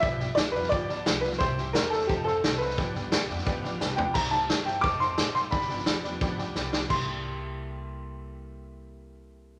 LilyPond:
<<
  \new Staff \with { instrumentName = "Honky-tonk piano" } { \time 4/4 \key c \major \tempo 4 = 175 <b' d'' g''>8 <b' d'' g''>8 <b' g''>8 <b' d'' f''>8 <b' d'' g''>8 <b' d'' a''>8 <b' d'' g''>8 <b' d'' f''>8 | <c'' e'' g''>8 <c'' e'' g''>8 <c'' e'' g''>8 <c'' e'' bes''>8 <c'' f'' a''>8 <c'' f'' c'''>8 <c'' f'' a''>8 <c'' f'' c'''>8 | <b' d'' g''>8 <b' d'' g''>8 <b' d'' g''>8 <b' d'' e'' g''>8 <b' d'' f'' g''>8 <b' d'' f'' g''>8 <b' d'' g'' a''>8 <b' d'' g'' b''>8 | <c'' e'' g''>8 <c'' e'' g''>8 <c'' e'' g''>8 <c'' e'' g''>8 <c'' f'' a''>8 <c'' f'' a''>8 <c'' f'' a''>8 <c'' f'' g''>8 |
<d'' g'' b''>8 <d'' g'' b''>8 <d'' g'' b''>8 <d'' g'' b''>8 <d'' g'' b''>8 <d'' g'' b''>8 <d'' g'' b''>8 <d'' g'' b''>8 | <e'' g'' c'''>1~ | <e'' g'' c'''>1 | }
  \new Staff \with { instrumentName = "Upright piano" } { \time 4/4 \key c \major e''4 d''8 b'8 d''4 r8 b'8 | c''4 bes'8 a'8 g'8 a'4 b'8~ | b'2. r8 g''8 | bes''8 a''4 g''8 d'''8 c'''4 c'''8 |
b''2. r4 | c'''1~ | c'''1 | }
  \new Staff \with { instrumentName = "Steel-string acoustic guitar" } { \time 4/4 \key c \major <g, d f b f' g'>8 <f b f' g'>8 <f b f' g'>8 <f b f' g'>8 <g, d f b f' g'>8 <f b f' g'>8 <f b f' g'>8 <f b f' g'>8 | <c g bes e' g'>8 <bes e' g'>8 <g bes e' g'>8 <bes e' g'>8 <f c' ees' a'>8 <c' ees' a'>8 <f c' ees' a'>8 <c' ees' a'>8 | <g, d f b d' g'>8 <f b d' g'>8 <f b d' g'>8 <f b d' g'>8 <g, d f b d' g'>8 <f b d' g'>8 <f b d' g'>8 <f b d' g'>8 | <c g bes e' g'>8 <bes e' g'>8 <g g'>8 <bes e' g'>8 <f c' ees' a'>8 <c' ees' a'>8 <f c' ees' a'>8 <c' ees' a'>8 |
<g, d f b d' g'>8 <f b d' g'>8 <f b d' g'>8 <f b d' g'>8 <g, d f b d' g'>8 <f b d' g'>8 <f b d' g'>8 <f b d' g'>8 | <c g bes e' a'>1~ | <c g bes e' a'>1 | }
  \new Staff \with { instrumentName = "Upright bass" } { \clef bass \time 4/4 \key c \major b,,8 g,,8 d,8 f,8 d,4 c,4 | c,4 e,4 f,,4 c,4 | g,,8 g,,8 d,8 f,8 d,4 c,4 | c,4 g,4 f,,4 a,,4 |
g,,4 e,4 d,4 c,4 | c,1~ | c,1 | }
  \new DrumStaff \with { instrumentName = "Drums" } \drummode { \time 4/4 <bd sn>8 sn8 <hhp sn>8 sn16 sn16 <bd sn>8 sn8 <hhp sn>8 sn16 sn16 | <bd sn>8 sn8 <hhp sn>8 sn16 sn16 <bd sn>8 sn8 <hhp sn>8 sn16 sn16 | <bd sn>8 sn8 <hhp sn>8 sn16 sn16 <bd sn>8 sn8 <hhp sn>8 tomfh8 | <cymc bd sn>16 sn16 sn8 <hhp sn>8 sn8 <bd sn>8 sn8 <hhp sn>8 sn8 |
<bd sn>16 sn16 sn16 sn16 <hhp sn>8 sn8 <bd sn>8 sn8 <hhp sn>8 sn8 | <cymc bd>4 r4 r4 r4 | r4 r4 r4 r4 | }
>>